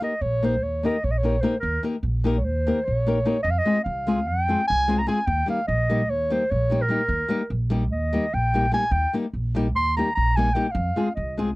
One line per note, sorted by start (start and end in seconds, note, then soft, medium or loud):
0.00 0.12 A#3 medium
0.00 0.12 D#4 soft
0.00 0.12 G4 medium
0.00 0.13 A#4 medium
0.00 0.23 D#5 medium
0.21 0.62 A#1 medium
0.21 0.46 C#5 medium
0.43 0.54 A#3 medium
0.43 0.54 D#4 medium
0.43 0.54 G4 medium
0.43 0.54 A#4 medium
0.43 0.64 C5 medium
0.62 0.87 D#2 medium
0.62 0.87 C#5 medium
0.83 0.95 A#3 medium
0.83 0.95 D#4 medium
0.83 0.95 G4 medium
0.83 0.96 A#4 medium
0.83 1.06 D#5 medium
1.04 1.39 A#1 medium
1.04 1.13 C#5 medium
1.11 1.19 D#5 medium
1.18 1.43 C#5 medium
1.23 1.34 A#3 medium
1.23 1.35 D#4 medium
1.23 1.35 G4 medium
1.23 1.35 A#4 medium
1.41 1.53 A#3 medium
1.41 1.54 D#4 medium
1.41 1.54 G4 soft
1.41 1.54 A#4 medium
1.41 1.59 C5 medium
1.60 1.76 D#2 medium
1.60 1.82 A#4 medium
1.83 1.94 A#3 medium
1.83 1.94 D#4 medium
1.83 1.95 G4 medium
1.83 1.95 A#4 medium
2.03 2.45 A#1 medium
2.24 2.36 A#3 medium
2.24 2.36 D#4 medium
2.24 2.36 G4 medium
2.24 2.37 A#4 medium
2.37 2.46 C#5 medium
2.45 2.70 D#2 medium
2.45 2.86 C5 medium
2.67 2.78 A#3 medium
2.67 2.78 D#4 medium
2.67 2.78 G4 medium
2.67 2.78 A#4 medium
2.85 3.22 A#1 medium
2.85 3.42 C#5 medium
3.07 3.17 A#3 medium
3.07 3.18 D#4 medium
3.07 3.18 G4 medium
3.07 3.18 A#4 medium
3.25 3.36 A#3 medium
3.25 3.36 D#4 medium
3.25 3.36 G4 soft
3.25 3.37 A#4 medium
3.43 3.58 F2 medium
3.43 3.52 D#5 loud
3.50 3.60 F5 medium
3.58 3.83 D#5 loud
3.65 3.77 G#3 medium
3.65 3.77 C4 medium
3.65 3.77 F4 soft
3.65 3.78 G#4 medium
3.84 4.28 C2 medium
3.84 4.29 F5 medium
4.07 4.18 G#3 medium
4.07 4.18 C4 medium
4.07 4.19 F4 medium
4.07 4.19 G#4 medium
4.27 4.53 F2 medium
4.27 4.67 G5 loud
4.48 4.60 G#3 medium
4.48 4.60 C4 medium
4.48 4.60 F4 medium
4.48 4.61 G#4 medium
4.67 5.04 C2 medium
4.67 5.00 G#5 loud
4.88 4.99 G#3 medium
4.88 4.99 C4 medium
4.88 5.00 F4 medium
4.88 5.00 G#4 medium
4.98 5.07 A#5 medium
5.07 5.18 G#3 medium
5.07 5.18 C4 medium
5.07 5.18 F4 medium
5.07 5.18 G#4 medium
5.07 5.28 G#5 medium
5.26 5.41 D#2 loud
5.26 5.49 G5 loud
5.46 5.58 G3 medium
5.46 5.59 A#3 soft
5.46 5.59 D#4 medium
5.46 5.59 G4 medium
5.46 5.67 F5 medium
5.67 6.09 A#1 medium
5.67 6.11 D#5 medium
5.90 6.01 G3 medium
5.90 6.01 A#3 medium
5.90 6.01 D#4 medium
5.90 6.01 G4 medium
6.09 6.34 D#2 medium
6.09 6.34 C#5 medium
6.30 6.42 G3 medium
6.30 6.42 A#3 medium
6.30 6.42 D#4 medium
6.30 6.43 G4 medium
6.30 6.52 C5 medium
6.51 6.86 A#1 medium
6.51 6.83 C#5 loud
6.70 6.81 G3 medium
6.70 6.82 A#3 medium
6.70 6.82 D#4 medium
6.70 6.82 G4 medium
6.82 7.55 A#4 medium
6.88 7.00 G3 medium
6.88 7.00 A#3 soft
6.88 7.01 D#4 medium
6.88 7.01 G4 medium
7.08 7.22 D#2 medium
7.28 7.41 G3 medium
7.28 7.41 A#3 medium
7.28 7.41 D#4 medium
7.28 7.41 G4 medium
7.50 7.92 A#1 medium
7.70 7.82 G3 medium
7.70 7.82 A#3 medium
7.70 7.83 D#4 medium
7.70 7.83 G4 medium
7.92 8.17 D#2 medium
7.92 8.35 D#5 medium
8.13 8.24 G3 medium
8.13 8.24 A#3 medium
8.13 8.25 D#4 medium
8.13 8.25 G4 medium
8.34 8.68 A#1 medium
8.34 8.73 G5 loud
8.54 8.65 G3 medium
8.54 8.65 A#3 soft
8.54 8.65 D#4 medium
8.54 8.65 G4 medium
8.72 8.83 G3 medium
8.72 8.83 A#3 soft
8.72 8.83 D#4 medium
8.72 8.84 G4 medium
8.72 8.93 G#5 loud
8.91 9.05 D#2 loud
8.91 9.14 G5 loud
9.13 9.24 G3 medium
9.13 9.25 A#3 medium
9.13 9.25 D#4 soft
9.13 9.25 G4 medium
9.33 9.76 A#1 medium
9.55 9.66 G3 medium
9.55 9.66 A#3 medium
9.55 9.66 D#4 medium
9.55 9.67 G4 medium
9.76 10.00 D#2 medium
9.76 9.96 C6 loud
9.97 10.08 G3 medium
9.97 10.08 A#3 medium
9.97 10.09 D#4 medium
9.97 10.09 G4 medium
9.97 10.14 A#5 medium
10.15 10.52 A#1 medium
10.15 10.38 A#5 loud
10.36 10.48 G3 medium
10.36 10.48 A#3 medium
10.36 10.48 D#4 medium
10.36 10.48 G4 medium
10.36 10.55 G#5 loud
10.54 10.66 G3 medium
10.54 10.66 A#3 medium
10.54 10.66 D#4 medium
10.54 10.66 G4 medium
10.54 10.68 G5 medium
10.68 11.15 F5 medium
10.68 10.73 G5 medium
10.75 10.88 F2 loud
10.96 11.07 G#3 medium
10.96 11.08 C4 medium
10.96 11.07 F4 medium
10.96 11.08 G#4 medium
11.15 11.56 C2 medium
11.15 11.37 D#5 medium
11.38 11.49 G#3 medium
11.38 11.49 C4 medium
11.38 11.49 F4 medium
11.38 11.49 G#4 medium